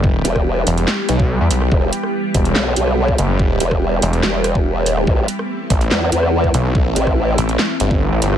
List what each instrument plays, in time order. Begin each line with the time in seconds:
Already playing: detuned saw bass F#1, ambient pad E3 G3 B3 G4
0.04 kick
0.25 wobble bass E1, closed hi-hat
0.36 kick, cross-stick
0.67 detuned saw bass E1, closed hi-hat
0.78 closed hi-hat
0.88 snare, clap
1.09 detuned saw bass B1, closed hi-hat
1.20 kick
1.41 detuned saw bass E2
1.51 detuned saw bass B1, closed hi-hat
1.61 cross-stick
1.72 wobble bass E1, kick
1.93 closed hi-hat
2.03 cross-stick
2.35 detuned saw bass E1, kick, closed hi-hat
2.45 closed hi-hat
2.55 wobble bass B1, snare, clap
2.76 wobble bass B1, closed hi-hat
2.87 cross-stick
3.08 kick
3.18 detuned saw bass F#1, closed hi-hat
3.39 kick
3.60 wobble bass E1, closed hi-hat
3.71 kick, cross-stick
4.02 detuned saw bass E1, closed hi-hat
4.13 closed hi-hat
4.23 wobble bass E1, snare, clap
4.44 cross-stick, closed hi-hat
4.55 kick
4.81 wobble bass D#1
4.86 closed hi-hat
4.97 cross-stick
5.07 wobble bass A1, ambient pad E3 A3 C4 E4, kick
5.28 closed hi-hat
5.39 cross-stick
5.70 detuned saw bass A1, kick, closed hi-hat
5.81 closed hi-hat
5.91 wobble bass E2, snare, clap
6.12 wobble bass E2, closed hi-hat
6.23 cross-stick
6.44 kick
6.54 detuned saw bass B1, closed hi-hat
6.75 kick
6.96 wobble bass A1, closed hi-hat
7.07 kick, cross-stick
7.38 detuned saw bass A1, closed hi-hat
7.49 closed hi-hat
7.59 snare, clap
7.80 detuned saw bass G1, closed hi-hat
7.91 kick
8.12 detuned saw bass A1
8.22 detuned saw bass G1, closed hi-hat
8.33 cross-stick